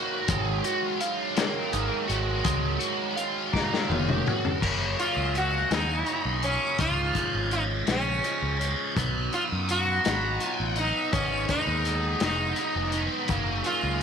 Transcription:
0.00 4.57 D#3 medium
0.00 4.59 F#3 medium
0.00 0.25 A#3 medium
0.00 1.73 D#4 medium
0.00 0.65 F#4 medium
0.00 1.37 A#4 medium
0.00 0.68 F5 medium
0.28 0.60 G#1 medium
0.28 2.10 G#3 medium
0.28 4.59 G#3 medium
0.28 kick loud
0.28 closed hi-hat medium
0.64 2.07 F#4 medium
0.64 closed hi-hat medium
1.00 2.81 F5 medium
1.00 closed hi-hat medium
1.37 3.18 A#4 medium
1.37 snare loud
1.37 closed hi-hat medium
1.73 1.89 G#1 medium
1.73 3.54 D#4 medium
1.73 closed hi-hat medium
2.08 2.41 G#1 medium
2.08 2.78 F#4 medium
2.08 closed hi-hat medium
2.44 2.76 C#2 medium
2.44 4.25 G#3 medium
2.44 kick loud
2.44 closed hi-hat medium
2.79 4.25 F#4 medium
2.79 closed hi-hat medium
3.17 4.62 F5 medium
3.17 closed hi-hat medium
3.53 4.62 A#4 medium
3.53 kick medium
3.53 snare medium
3.74 snare medium
3.90 4.21 F1 medium
3.90 4.62 D#4 medium
3.90 high tom medium
4.09 mid tom medium
4.26 4.62 F#4 medium
4.26 mid tom medium
4.45 floor tom medium
4.61 4.94 F#1 medium
4.61 5.34 F#2 medium
4.61 5.34 C#3 medium
4.61 4.99 F#3 medium
4.61 4.98 A#3 medium
4.61 4.97 C#4 medium
4.61 kick loud
4.61 crash medium
4.97 5.72 F#3 soft
4.97 5.71 A#3 medium
4.97 5.69 C#4 medium
4.97 5.36 F4 medium
4.97 closed hi-hat soft
5.17 5.64 C#2 medium
5.35 5.73 F#4 medium
5.35 closed hi-hat medium
5.71 6.02 D#2 medium
5.71 6.45 F#2 medium
5.71 6.05 C#3 medium
5.71 6.06 F#3 medium
5.71 6.07 A#3 medium
5.71 6.08 C#4 medium
5.71 6.44 D#4 medium
5.71 snare loud
5.71 closed hi-hat medium
6.06 6.77 C#3 medium
6.06 6.44 F#3 medium
6.06 6.43 A#3 medium
6.06 6.41 C#4 medium
6.06 closed hi-hat medium
6.25 6.56 B1 medium
6.42 6.78 F#3 medium
6.42 6.78 A#3 medium
6.42 6.77 C#4 medium
6.42 6.80 C#4 medium
6.42 closed hi-hat medium
6.78 7.10 C#2 medium
6.78 7.51 C#3 medium
6.78 7.18 F3 medium
6.78 7.16 G#3 medium
6.78 7.14 C#4 medium
6.78 7.52 F4 medium
6.78 kick loud
6.78 closed hi-hat medium
7.15 7.87 G#3 medium
7.15 7.85 C#4 medium
7.15 kick medium
7.15 closed hi-hat soft
7.19 7.87 F3 medium
7.35 7.81 G#1 medium
7.51 7.62 D#4 medium
7.51 closed hi-hat soft
7.87 8.19 A#1 medium
7.87 8.21 C#3 medium
7.87 8.22 F3 medium
7.87 8.23 G#3 medium
7.87 8.24 C#4 medium
7.87 snare medium
7.87 closed hi-hat medium
7.91 8.67 C#4 medium
8.22 8.93 C#3 medium
8.22 8.61 F3 medium
8.22 8.60 G#3 medium
8.22 8.58 C#4 medium
8.22 closed hi-hat medium
8.42 8.74 C#2 medium
8.59 8.95 F3 medium
8.59 8.95 G#3 medium
8.59 8.94 C#4 medium
8.59 closed hi-hat medium
8.96 9.28 B1 medium
8.96 9.69 B2 medium
8.96 9.35 F#3 medium
8.96 9.34 B3 medium
8.96 9.32 D#4 medium
8.96 kick loud
8.96 closed hi-hat medium
9.33 10.06 F#3 medium
9.33 10.05 B3 medium
9.33 10.04 D#4 medium
9.33 9.43 F4 medium
9.33 closed hi-hat soft
9.52 9.99 F#2 medium
9.69 10.45 F#4 medium
9.69 closed hi-hat medium
10.05 10.37 G#1 medium
10.05 10.40 B2 medium
10.05 10.42 F#3 medium
10.05 10.43 B3 medium
10.05 10.44 D#4 medium
10.05 snare loud
10.05 closed hi-hat medium
10.40 11.11 B2 medium
10.40 10.79 F#3 medium
10.40 10.77 B3 medium
10.40 closed hi-hat medium
10.45 10.75 D#4 medium
10.45 10.78 F4 medium
10.60 10.91 A1 medium
10.76 11.12 B3 medium
10.76 11.11 D#4 medium
10.76 11.13 D#4 medium
10.76 closed hi-hat medium
10.80 11.13 F#3 medium
11.12 11.44 G#1 medium
11.12 11.85 G#2 medium
11.12 11.86 D#3 medium
11.12 11.52 G#3 medium
11.12 11.50 B3 medium
11.12 11.49 C#4 medium
11.12 11.48 D#4 medium
11.12 kick loud
11.12 closed hi-hat medium
11.49 12.23 B3 medium
11.49 12.22 D#4 medium
11.49 kick medium
11.49 closed hi-hat medium
11.53 12.23 G#3 medium
11.67 12.14 D#2 medium
11.85 closed hi-hat medium
12.20 12.53 F1 medium
12.20 12.59 B3 medium
12.20 12.60 D#4 medium
12.20 12.99 D#4 medium
12.20 snare medium
12.20 closed hi-hat medium
12.24 12.96 G#2 medium
12.24 12.57 D#3 medium
12.24 12.58 G#3 medium
12.56 13.28 D#3 medium
12.56 12.96 G#3 medium
12.56 closed hi-hat medium
12.60 12.94 B3 medium
12.60 12.92 D#4 medium
12.76 13.07 F1 medium
12.92 13.29 B3 medium
12.92 13.27 D#4 medium
12.92 closed hi-hat medium
12.97 13.29 G#3 soft
13.28 13.61 F#1 medium
13.28 14.01 F#2 medium
13.28 14.01 C#3 medium
13.28 13.67 F#3 medium
13.28 13.65 A#3 medium
13.28 kick medium
13.28 closed hi-hat medium
13.32 13.63 C#4 medium
13.63 14.03 A#3 medium
13.63 14.03 C#4 medium
13.63 14.02 F4 medium
13.63 closed hi-hat medium
13.68 14.03 F#3 medium
13.83 14.03 C#2 medium

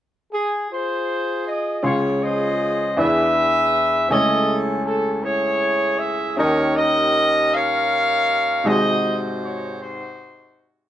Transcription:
0.32 0.67 G#4 medium
0.70 1.80 F4 medium
0.70 1.80 G#4 medium
0.70 1.45 C5 medium
1.46 1.80 D#5 medium
1.83 2.93 C#2 medium
1.83 2.93 C#3 medium
1.83 2.96 C#4 medium
1.83 2.97 F4 medium
1.83 2.93 F4 medium
1.83 2.96 G#4 medium
1.83 2.20 G#4 medium
1.83 2.21 C#5 medium
1.83 2.97 F5 medium
1.83 2.97 C6 medium
2.20 2.93 G#4 medium
2.20 2.93 C5 medium
2.20 2.96 D#5 loud
2.96 4.07 E2 medium
2.96 4.07 E3 medium
2.96 4.10 D4 medium
2.96 4.08 E4 medium
2.96 4.11 G#4 medium
2.96 4.07 G#4 medium
2.96 4.11 B4 medium
2.96 4.08 B4 medium
2.96 3.04 D5 medium
2.96 4.10 E5 loud
3.05 4.15 E5 medium
4.09 6.34 C#2 medium
4.09 6.34 C#3 medium
4.09 6.35 A3 medium
4.09 4.16 C4 medium
4.09 6.34 E4 medium
4.09 5.21 G#4 medium
4.09 4.83 A4 medium
4.09 6.35 C#5 medium
4.09 4.55 D#5 loud
4.09 6.34 G#5 medium
4.15 6.35 C#4 medium
4.84 5.21 A4 medium
5.22 6.34 E4 medium
5.22 6.34 G#4 medium
5.22 5.99 C#5 loud
5.97 6.37 E5 medium
6.36 8.62 D#2 medium
6.36 8.62 D#3 medium
6.36 8.61 C#4 medium
6.36 8.62 D#4 medium
6.36 8.62 G4 medium
6.36 6.77 G4 medium
6.36 8.62 A#4 medium
6.36 6.77 A#4 medium
6.36 6.72 C#5 loud
6.36 8.63 D#5 medium
6.75 7.87 G4 medium
6.75 7.53 A#4 medium
6.75 7.52 D#5 loud
7.52 8.63 A#4 medium
7.52 8.63 C#5 medium
7.52 8.66 F5 loud
8.64 10.89 G#1 medium
8.64 10.89 G#2 medium
8.64 10.89 C3 medium
8.64 10.89 D#4 medium
8.64 10.89 F#4 medium
8.64 9.76 F#4 medium
8.64 10.89 G#4 medium
8.64 9.77 C5 medium
8.64 9.14 D#5 loud
8.64 10.89 D#5 medium
9.42 9.77 C#5 medium
9.80 10.89 D#4 medium
9.80 10.89 F#4 medium
9.80 10.65 C5 medium

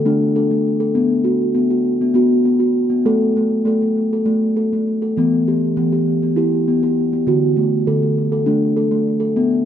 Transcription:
0.06 0.36 A3 medium
0.06 0.92 D4 medium
0.36 0.51 A4 medium
0.51 0.81 A3 medium
0.80 0.96 A4 medium
0.95 1.26 B3 medium
1.24 1.55 F#4 medium
1.55 1.71 B3 medium
1.70 2.01 F#4 medium
2.01 2.13 B3 medium
2.14 2.44 B3 medium
2.14 2.46 F#4 medium
2.45 2.61 B3 medium
2.60 2.91 F#4 medium
2.90 3.06 B3 medium
3.05 3.36 A3 medium
3.05 3.36 A4 medium
3.37 3.64 A3 medium
3.65 3.81 A3 medium
3.65 3.82 A4 medium
3.82 4.12 A3 medium
4.13 4.27 A4 medium
4.26 4.72 A3 medium
4.57 4.72 A4 medium
4.73 5.03 A3 medium
5.02 5.17 A4 medium
5.17 5.73 E3 medium
5.17 5.48 B3 medium
5.48 5.78 G4 medium
5.77 6.33 E3 medium
5.77 5.92 B3 medium
5.92 6.22 G4 medium
6.22 6.37 B3 medium
6.36 7.23 E4 medium
6.36 6.67 G4 medium
6.68 6.83 B3 medium
6.83 7.13 G4 medium
7.13 7.28 B3 medium
7.27 7.83 D3 medium
7.27 7.57 F#4 medium
7.57 7.87 A3 medium
7.87 8.43 D3 medium
7.87 8.02 A4 medium
8.02 8.32 A3 medium
8.32 8.47 A4 medium
8.46 8.77 A3 medium
8.46 9.32 D4 medium
8.77 8.92 A4 medium
8.91 9.21 A3 medium
9.20 9.36 A4 medium
9.36 9.65 B3 medium

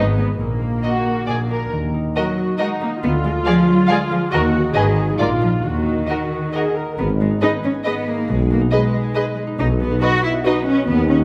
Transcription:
0.00 0.33 G#1 medium
0.00 0.42 G#2 soft
0.00 0.18 G#3 medium
0.00 0.39 B3 soft
0.00 0.17 D#4 soft
0.00 1.30 D#5 soft
0.18 0.27 B3 medium
0.18 1.30 D#4 soft
0.18 0.42 G#4 soft
0.40 0.77 A#1 soft
0.40 1.27 A#2 soft
0.40 1.48 A#3 soft
0.40 1.49 A#3 medium
0.62 3.04 A#3 soft
0.83 1.30 F#4 soft
0.83 1.26 F#4 soft
0.83 0.91 D#5 soft
1.06 2.15 A#4 soft
1.28 1.65 A#1 soft
1.28 1.74 A#2 soft
1.28 1.36 G#4 soft
1.28 1.36 D5 soft
1.50 1.74 D4 soft
1.50 1.75 F4 soft
1.50 1.72 A#4 soft
1.71 2.08 D#2 medium
1.71 3.04 D#3 soft
1.94 3.05 D#4 soft
2.16 2.57 F#3 medium
2.16 2.56 F#4 soft
2.16 2.24 F#4 soft
2.16 2.24 A#4 soft
2.16 3.05 A#4 soft
2.16 2.24 D#5 soft
2.38 2.80 D#5 soft
2.59 2.68 G#3 medium
2.59 3.02 D#4 medium
2.59 2.67 F#4 soft
2.59 2.67 A#4 soft
2.59 2.67 D#5 soft
2.59 3.05 F#5 soft
2.81 2.90 A#3 medium
2.81 3.05 D#5 soft
3.02 3.38 D2 medium
3.02 4.34 D3 soft
3.02 3.11 B3 medium
3.02 4.29 F4 medium
3.24 3.32 G#3 medium
3.24 4.34 G#3 soft
3.45 3.67 F3 medium
3.45 3.54 G#4 medium
3.45 4.10 G#4 soft
3.45 3.54 D5 soft
3.45 3.53 F5 medium
3.68 3.89 F#3 medium
3.68 4.34 F4 soft
3.87 3.97 G#3 medium
3.87 3.98 G#4 medium
3.87 3.98 D5 soft
3.87 3.95 F5 medium
3.87 4.34 F5 medium
4.11 4.19 F3 medium
4.11 4.34 G#4 soft
4.31 4.68 D#2 medium
4.31 4.77 D#3 medium
4.31 4.74 F#4 medium
4.31 4.41 F#4 medium
4.31 4.42 A#4 medium
4.31 4.39 D#5 medium
4.53 4.95 D#4 soft
4.53 4.77 F#4 soft
4.74 5.11 G#1 medium
4.74 5.20 G#2 medium
4.74 5.06 D#3 medium
4.74 5.18 G#4 medium
4.74 4.83 G#4 medium
4.74 4.84 B4 medium
4.74 4.82 D#5 medium
4.97 5.20 D#4 soft
4.97 5.65 G#4 soft
5.09 5.13 F#3 medium
5.18 5.56 A#1 medium
5.18 5.65 A#2 medium
5.18 5.27 G#3 medium
5.18 5.62 F4 medium
5.18 5.27 F4 soft
5.18 5.27 A#4 soft
5.18 5.27 D5 medium
5.41 5.49 F3 medium
5.41 5.65 D4 soft
5.41 5.66 F4 soft
5.63 6.01 D#2 medium
5.63 7.00 D#3 soft
5.63 6.74 D#3 medium
5.63 6.04 F#4 medium
5.86 7.30 D#4 soft
6.08 6.50 F#4 soft
6.08 6.17 F#4 soft
6.08 7.00 A#4 soft
6.08 6.18 A#4 soft
6.08 6.16 D#5 soft
6.32 6.75 D#5 soft
6.53 6.63 F#4 soft
6.53 6.75 G#4 medium
6.53 6.63 A#4 soft
6.53 6.61 D#5 soft
6.53 7.00 F#5 soft
6.75 6.98 A#4 soft
6.75 7.62 D#5 soft
6.98 7.34 G#1 medium
6.98 8.30 G#2 medium
6.98 7.07 B3 medium
7.09 8.30 D#3 soft
7.20 7.28 G#3 medium
7.20 8.49 B3 soft
7.31 8.16 D#4 soft
7.41 7.50 D#4 medium
7.41 8.05 G#4 soft
7.41 7.50 G#4 soft
7.41 7.49 B4 soft
7.41 7.49 D#5 soft
7.53 7.95 B4 soft
7.63 7.72 C#4 medium
7.63 7.84 D#5 soft
7.74 9.03 G#5 soft
7.84 8.07 B3 medium
7.84 7.93 G#4 medium
7.84 7.94 B4 soft
7.84 7.92 D#5 medium
7.84 8.92 D#5 medium
7.96 8.81 B4 soft
8.06 8.29 A#3 medium
8.06 8.70 G#4 soft
8.17 8.60 D#4 soft
8.28 8.65 B1 medium
8.28 9.57 B2 medium
8.28 8.50 G#3 medium
8.39 9.60 G#3 soft
8.50 8.59 A#3 medium
8.50 9.79 B3 soft
8.61 9.46 D#4 soft
8.71 9.36 G#3 medium
8.71 9.35 G#4 soft
8.71 8.80 G#4 soft
8.71 8.81 B4 soft
8.71 8.80 D#5 medium
8.82 9.24 B4 soft
8.93 9.14 D#5 soft
9.04 9.60 G#5 soft
9.15 9.23 G#4 medium
9.15 9.23 B4 medium
9.15 10.22 D#5 medium
9.15 9.24 D#5 medium
9.25 10.11 B4 soft
9.37 9.60 G#4 soft
9.47 9.90 D#4 medium
9.58 9.94 B1 medium
9.58 10.89 B2 medium
9.58 9.67 D#4 medium
9.69 11.24 F#3 soft
9.80 10.97 B3 soft
9.80 10.01 B3 medium
9.91 10.76 D#4 soft
10.01 10.09 F#4 medium
10.01 10.65 F#4 medium
10.01 10.23 F#4 medium
10.01 10.10 B4 medium
10.01 10.10 D#5 medium
10.13 10.54 B4 soft
10.24 10.32 E4 medium
10.24 10.43 D#5 soft
10.34 11.24 F#5 medium
10.45 10.66 D#4 medium
10.45 10.53 F#4 medium
10.45 10.53 B4 medium
10.45 11.24 D#5 medium
10.45 10.53 D#5 medium
10.55 11.24 B4 medium
10.66 10.87 C#4 medium
10.66 11.18 F#4 soft
10.77 11.07 D#4 medium
10.87 11.23 D#2 medium
10.87 11.24 D#3 medium
10.87 11.08 B3 medium
10.98 11.24 B3 soft
11.08 11.17 C#4 medium
11.08 11.24 D#4 medium
11.20 11.24 F#4 medium

